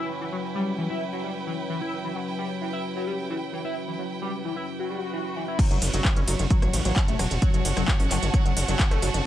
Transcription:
Already playing: F#3 C#4 E4 B4 G5
0.21 E3
0.32 F#3
0.55 G3
0.78 E3
0.90 E4
1.13 F#3
1.24 G3
1.47 E3
1.70 E3
1.81 E4
2.04 E3
2.15 F#3
2.38 G3
2.61 E3
2.73 E4
2.96 F#3
3.07 G3
3.30 E3
3.53 E3
3.65 E4
3.88 E3
3.99 F#3
4.22 G3
4.45 E3
4.56 E4
4.67 swell
4.79 F#3
4.90 G3
5.13 E3
5.36 E3
5.48 E4
5.59 F#3 C#4 F#4, kick, closed hi-hat, crash
5.66 C#5
5.71 F#1 F#3, closed hi-hat
5.82 F#1, open hi-hat, ride
5.94 F#1 F#3, closed hi-hat
6.05 kick, cross-stick, clap, closed hi-hat
6.16 F#1 C#4, closed hi-hat
6.28 F#1 F#3, open hi-hat, ride
6.39 F#1, closed hi-hat
6.44 F#5
6.50 F#3, kick, closed hi-hat
6.62 A1 F#3, cross-stick, closed hi-hat
6.73 A1, open hi-hat, ride
6.85 A1 F#3 A5, closed hi-hat
6.96 kick, clap, closed hi-hat
7.08 E1 A3, closed hi-hat
7.19 E1 F#3, cross-stick, open hi-hat, ride
7.31 E1, closed hi-hat
7.42 F#3, kick, closed hi-hat
7.54 F#1 F#3, closed hi-hat
7.65 F#1, open hi-hat, ride
7.77 F#1 F#3, cross-stick, closed hi-hat
7.88 kick, clap, closed hi-hat
8.00 G1 C#4, open hi-hat
8.11 G1 F#3, clap, open hi-hat, ride
8.23 G1, closed hi-hat
8.34 F#3, kick, cross-stick, closed hi-hat
8.45 F#1 F#3, closed hi-hat
8.57 F#1, open hi-hat, ride
8.68 F#1 F#3, closed hi-hat
8.79 kick, clap, closed hi-hat
8.91 F#1 A3, cross-stick, closed hi-hat
9.02 F#1 F#3, open hi-hat, ride
9.14 F#1, closed hi-hat

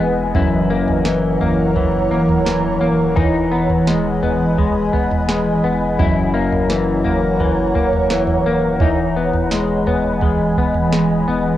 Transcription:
Already playing: E3 G#3 D#4 B4 D#5 G#5
0.00 E1 B3
0.35 F#1 F#2 E4 C#5 F#5 A#5, kick, floor tom
0.70 A#3
0.88 F#1, floor tom
1.05 E3, snare
1.41 F#1 A#3, floor tom
1.76 E3, kick, floor tom
2.11 E1 A#3
2.29 floor tom
2.45 E3, snare
2.81 D#1 A#3
3.16 E1 E3 D#4 D#5 G#5 B5, kick, floor tom
3.52 B3
3.69 E1, floor tom
3.87 G#3, snare
4.22 E1 B3, floor tom
4.58 G#3, kick, floor tom
4.93 D#1 B3, kick
5.11 floor tom
5.29 G#3, snare
5.63 E1 B3
5.98 F#1 F#2 E4 C#5 F#5 A#5, kick, floor tom
6.34 A#3
6.52 F#1, floor tom
6.70 E3, snare
7.04 F#1 A#3, floor tom
7.40 E3, kick, floor tom
7.75 E1 A#3, kick
7.93 floor tom
8.10 E3, snare
8.27 floor tom
8.46 D#1 A#3
8.80 E1 E3 D#4 D#5 G#5 B5, kick, floor tom
9.17 B3
9.34 E1, floor tom
9.51 G#3, snare
9.87 E1 B3, floor tom
10.21 G#3, kick, floor tom
10.57 D#1 B3, kick
10.74 floor tom
10.93 G#3, snare
11.28 E1 B3

